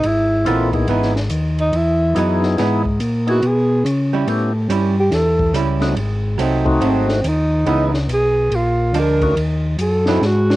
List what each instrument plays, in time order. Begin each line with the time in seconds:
0.03 tonewheel organ G#1, tenor saxophone E4, ride
0.45 tonewheel organ A#1 C4 E4 F4 A4, hollow-body jazz guitar E3 B3 D#4, hi-hat pedal, ride
0.72 tonewheel organ B3 D#4 E4 G#4, kick, ride
0.87 tonewheel organ G#1 B3 D#4 E4 G#4, hollow-body jazz guitar E3 B3 D#4, ride
1.02 snare
1.16 snare
1.29 tonewheel organ D#2, hi-hat pedal, ride
1.58 tenor saxophone D#4, ride
1.73 tonewheel organ E2, tenor saxophone E4, ride
2.15 tonewheel organ F#2 B3 D#4 E4 G#4, hollow-body jazz guitar E3 B3 D#4, hi-hat pedal, ride
2.43 snare
2.57 tonewheel organ G#2 B3 D#4 E4 G#4, hollow-body jazz guitar E3 B3 D#4, snare, ride
2.85 kick
3.00 tonewheel organ A#2, hi-hat pedal, ride
3.27 tonewheel organ B3 D#4 E4 G#4, tenor saxophone F#4, ride
3.43 tonewheel organ B2, ride
3.47 tenor saxophone G#4
3.85 tonewheel organ C#3, hi-hat pedal, ride
4.13 hollow-body jazz guitar G3 C#4 E4
4.27 tonewheel organ A2 B3 C#4 E4 G4, ride
4.69 tonewheel organ G2, hollow-body jazz guitar G3 C#4 E4, hi-hat pedal, ride
5.00 tenor saxophone G4
5.11 tonewheel organ E2, tenor saxophone A4, snare, ride
5.39 kick
5.53 tonewheel organ C#2, hollow-body jazz guitar G3 C#4 E4, hi-hat pedal, ride
5.80 tonewheel organ A3 C4 D#4 F#4, snare, ride
5.96 tonewheel organ G#1, ride
6.38 tonewheel organ C2, hollow-body jazz guitar F#3 A3 C4, tenor saxophone D#4, hi-hat pedal, ride
6.65 tonewheel organ A3 C4 D#4 F#4, kick
6.81 tonewheel organ G#1, hollow-body jazz guitar F#3 A3 C4, tenor saxophone C4, ride
7.09 snare
7.24 tonewheel organ D#2, hi-hat pedal, ride
7.28 tenor saxophone D#4
7.66 tonewheel organ C#2 G#3 B3 D#4 E4, hollow-body jazz guitar E3 B3 D#4, ride
7.94 snare
8.08 tonewheel organ B1, hi-hat pedal, ride
8.13 tenor saxophone G#4
8.51 tonewheel organ A#1, ride
8.55 tenor saxophone F4
8.93 tonewheel organ D2, hollow-body jazz guitar F3 G#3 D4, hi-hat pedal, ride
8.99 tenor saxophone A#4
9.21 tonewheel organ A3 C#4 D#4 F#4, kick, ride
9.36 tonewheel organ D#2, ride
9.78 tonewheel organ F#2, tenor saxophone A4, hi-hat pedal, ride
10.06 hollow-body jazz guitar F#3 C4 E4, tonewheel organ C4 D#4 E4 F#4, snare
10.21 tonewheel organ G#2, snare
10.25 tenor saxophone F#4
10.50 snare